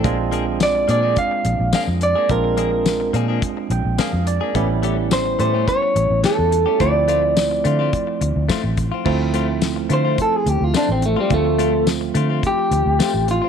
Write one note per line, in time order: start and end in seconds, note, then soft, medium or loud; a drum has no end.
0.04 0.85 A#1 medium
0.04 0.19 F3 medium
0.04 2.26 G#3 medium
0.04 0.18 A#3 medium
0.04 2.26 C4 medium
0.04 2.26 D4 medium
0.04 0.18 D4 medium
0.04 2.26 F4 medium
0.04 0.17 G#4 medium
0.04 kick loud
0.04 closed hi-hat medium
0.18 muted clean electric guitar stroke soft
0.32 0.47 F3 medium
0.32 0.46 A#3 medium
0.32 0.46 D4 medium
0.32 0.45 G#4 medium
0.32 closed hi-hat medium
0.46 muted clean electric guitar stroke soft
0.60 0.89 D5 medium
0.60 snare loud
0.60 closed hi-hat medium
0.60 tambourine loud
0.75 muted clean electric guitar stroke soft
0.88 1.14 A#2 medium
0.88 1.03 F3 medium
0.88 1.03 A#3 medium
0.88 1.02 D4 medium
0.88 1.01 G#4 medium
0.88 1.18 D5 medium
0.88 closed hi-hat medium
1.03 1.15 F3 medium
1.03 1.16 A#3 medium
1.03 1.16 D4 medium
1.03 1.16 G#4 medium
1.16 1.74 F5 loud
1.16 kick medium
1.16 closed hi-hat medium
1.31 muted clean electric guitar stroke soft
1.45 1.58 A#1 medium
1.45 muted clean electric guitar stroke soft
1.45 closed hi-hat medium
1.59 1.72 A#1 medium
1.73 1.88 F3 medium
1.73 1.88 A#3 medium
1.73 1.88 D4 medium
1.73 1.87 G#4 medium
1.73 1.82 F5 medium
1.73 snare loud
1.73 closed hi-hat medium
1.73 tambourine loud
1.88 2.13 F2 medium
1.88 muted clean electric guitar stroke soft
2.01 2.29 D5 medium
2.01 muted clean electric guitar stroke soft
2.01 closed hi-hat medium
2.15 2.34 A#3 soft
2.15 2.33 D4 soft
2.15 2.32 G#4 soft
2.29 3.10 A#1 medium
2.29 4.51 G#3 medium
2.29 4.51 C4 medium
2.29 4.51 D4 medium
2.29 4.51 F4 medium
2.29 3.11 A#4 medium
2.29 kick loud
2.29 closed hi-hat medium
2.44 muted clean electric guitar stroke soft
2.57 2.72 F3 medium
2.57 2.72 A#3 medium
2.57 2.71 D4 medium
2.57 2.70 G#4 medium
2.57 closed hi-hat medium
2.72 muted clean electric guitar stroke soft
2.86 snare loud
2.86 closed hi-hat medium
2.86 tambourine medium
3.00 muted clean electric guitar stroke soft
3.13 3.39 A#2 medium
3.13 3.28 F3 medium
3.13 3.28 A#3 medium
3.13 3.28 D4 medium
3.13 3.27 G#4 medium
3.13 closed hi-hat medium
3.28 3.41 F3 medium
3.28 3.42 A#3 medium
3.28 3.42 D4 medium
3.28 3.42 G#4 medium
3.42 muted clean electric guitar stroke soft
3.42 kick medium
3.42 closed hi-hat medium
3.57 muted clean electric guitar stroke soft
3.70 3.83 A#1 medium
3.70 3.97 G5 medium
3.70 muted clean electric guitar stroke soft
3.70 closed hi-hat medium
3.85 3.97 A#1 medium
3.98 4.13 F3 medium
3.98 4.13 A#3 medium
3.98 4.12 D4 medium
3.98 4.12 G#4 medium
3.98 4.25 F5 medium
3.98 snare loud
3.98 closed hi-hat medium
3.98 tambourine loud
4.13 4.39 F2 medium
4.13 muted clean electric guitar stroke soft
4.27 4.53 D5 medium
4.27 muted clean electric guitar stroke soft
4.27 closed hi-hat medium
4.41 4.55 A#3 soft
4.41 4.55 D4 soft
4.41 4.55 G#4 medium
4.55 5.35 A1 medium
4.55 4.69 E3 medium
4.55 6.77 G3 medium
4.55 4.69 A3 medium
4.55 6.76 B3 medium
4.55 6.77 C#4 medium
4.55 4.69 C#4 medium
4.55 6.77 E4 medium
4.55 4.68 G4 medium
4.55 kick loud
4.55 closed hi-hat medium
4.69 muted clean electric guitar stroke soft
4.83 4.98 E3 medium
4.83 4.97 A3 medium
4.83 4.97 C#4 medium
4.83 4.96 G4 loud
4.83 closed hi-hat medium
4.97 muted clean electric guitar stroke soft
5.11 5.39 C5 medium
5.11 snare loud
5.11 closed hi-hat medium
5.11 tambourine loud
5.26 muted clean electric guitar stroke soft
5.39 5.65 A2 medium
5.39 5.54 E3 medium
5.39 5.54 A3 medium
5.39 5.53 C#4 medium
5.39 5.52 G4 medium
5.39 5.68 C5 medium
5.39 closed hi-hat medium
5.54 5.67 E3 medium
5.54 5.67 A3 medium
5.54 5.67 C#4 medium
5.54 5.67 G4 medium
5.68 6.20 C#5 medium
5.68 muted clean electric guitar stroke soft
5.68 kick medium
5.68 closed hi-hat medium
5.82 muted clean electric guitar stroke soft
5.96 6.09 A1 medium
5.96 muted clean electric guitar stroke soft
5.96 closed hi-hat medium
6.10 6.23 A1 medium
6.24 6.38 E3 medium
6.24 6.38 A3 medium
6.24 6.38 C#4 medium
6.24 6.37 G4 medium
6.24 6.83 A4 medium
6.24 snare loud
6.24 closed hi-hat medium
6.24 tambourine loud
6.38 6.64 E2 medium
6.38 muted clean electric guitar stroke soft
6.51 muted clean electric guitar stroke soft
6.51 closed hi-hat medium
6.66 6.78 A3 soft
6.66 6.80 C#4 soft
6.66 6.80 G4 medium
6.79 7.61 D2 medium
6.79 9.02 F3 medium
6.79 6.95 A3 medium
6.79 9.02 A3 medium
6.79 6.94 C4 medium
6.79 9.02 C4 medium
6.79 9.02 E4 medium
6.79 6.93 F4 medium
6.79 8.46 D5 medium
6.79 kick medium
6.79 closed hi-hat medium
6.94 muted clean electric guitar stroke soft
7.08 7.23 A3 medium
7.08 7.22 C4 medium
7.08 7.21 F4 medium
7.08 closed hi-hat medium
7.22 muted clean electric guitar stroke soft
7.37 snare loud
7.37 closed hi-hat medium
7.37 tambourine loud
7.51 muted clean electric guitar stroke soft
7.64 7.90 D3 medium
7.64 7.79 A3 medium
7.64 7.79 C4 medium
7.64 7.78 F4 medium
7.64 closed hi-hat medium
7.79 7.91 A3 medium
7.79 7.92 C4 medium
7.79 7.93 F4 medium
7.92 muted clean electric guitar stroke soft
7.92 kick medium
7.92 closed hi-hat medium
8.07 muted clean electric guitar stroke soft
8.21 8.34 D2 medium
8.21 muted clean electric guitar stroke soft
8.21 closed hi-hat medium
8.36 8.48 D2 medium
8.49 8.64 A3 medium
8.49 8.63 C4 medium
8.49 8.62 F4 medium
8.49 kick medium
8.49 snare loud
8.49 closed hi-hat medium
8.49 tambourine loud
8.63 8.89 A1 medium
8.63 muted clean electric guitar stroke medium
8.77 muted clean electric guitar stroke soft
8.77 kick medium
8.77 closed hi-hat medium
8.92 9.05 C4 soft
8.92 9.05 F4 medium
9.05 9.86 D2 medium
9.05 11.27 F3 medium
9.05 9.20 A3 medium
9.05 11.27 A3 medium
9.05 11.27 C4 medium
9.05 9.20 C4 medium
9.05 11.27 E4 medium
9.05 9.19 F4 medium
9.05 kick loud
9.05 crash medium
9.20 muted clean electric guitar stroke soft
9.34 9.48 A3 medium
9.34 9.48 C4 medium
9.34 9.47 F4 medium
9.34 closed hi-hat medium
9.48 muted clean electric guitar stroke soft
9.62 snare loud
9.62 closed hi-hat medium
9.62 tambourine loud
9.76 muted clean electric guitar stroke soft
9.89 10.16 D3 medium
9.89 10.04 A3 medium
9.89 10.04 C4 medium
9.89 10.03 F4 medium
9.89 10.19 C5 medium
9.89 closed hi-hat medium
10.05 10.17 A3 medium
10.05 10.17 C4 medium
10.05 10.18 F4 medium
10.18 10.36 A4 medium
10.18 muted clean electric guitar stroke soft
10.18 kick medium
10.18 closed hi-hat medium
10.33 10.49 G#4 medium
10.33 muted clean electric guitar stroke soft
10.46 10.60 D2 medium
10.46 10.64 G4 medium
10.46 muted clean electric guitar stroke soft
10.46 closed hi-hat medium
10.61 10.73 D2 medium
10.61 10.76 F4 medium
10.74 10.89 A3 medium
10.74 10.88 C4 medium
10.74 10.90 D4 medium
10.74 10.87 F4 medium
10.74 snare loud
10.74 closed hi-hat medium
10.74 tambourine loud
10.88 11.14 A1 medium
10.88 11.04 C4 medium
10.88 muted clean electric guitar stroke soft
11.02 11.18 A3 medium
11.02 muted clean electric guitar stroke soft
11.02 closed hi-hat medium
11.16 11.32 G3 medium
11.16 11.35 C4 soft
11.16 11.33 F4 medium
11.30 12.11 D2 loud
11.30 13.49 F3 medium
11.30 13.49 A3 medium
11.30 11.87 A3 medium
11.30 13.49 C4 medium
11.30 13.49 F4 medium
11.30 kick loud
11.30 closed hi-hat medium
11.45 muted clean electric guitar stroke soft
11.59 11.73 A3 medium
11.59 11.73 C4 medium
11.59 11.72 F4 medium
11.59 closed hi-hat medium
11.73 muted clean electric guitar stroke soft
11.87 snare loud
11.87 closed hi-hat medium
11.87 tambourine loud
12.01 muted clean electric guitar stroke soft
12.15 12.41 D3 medium
12.15 12.29 A3 medium
12.15 12.29 C4 medium
12.15 12.28 F4 medium
12.15 closed hi-hat medium
12.29 12.42 A3 soft
12.29 12.43 C4 medium
12.29 12.43 F4 medium
12.43 13.27 G4 medium
12.43 muted clean electric guitar stroke soft
12.43 kick medium
12.43 closed hi-hat medium
12.58 muted clean electric guitar stroke soft
12.71 12.85 D2 medium
12.71 muted clean electric guitar stroke soft
12.71 closed hi-hat medium
12.86 12.98 D2 medium
12.99 13.14 A3 medium
12.99 13.14 C4 medium
12.99 13.13 F4 medium
12.99 snare loud
12.99 closed hi-hat medium
12.99 tambourine loud
13.14 13.40 A1 medium
13.14 muted clean electric guitar stroke soft
13.28 13.49 F4 medium
13.28 muted clean electric guitar stroke soft
13.28 closed hi-hat medium
13.42 13.49 C4 soft
13.42 13.49 F4 soft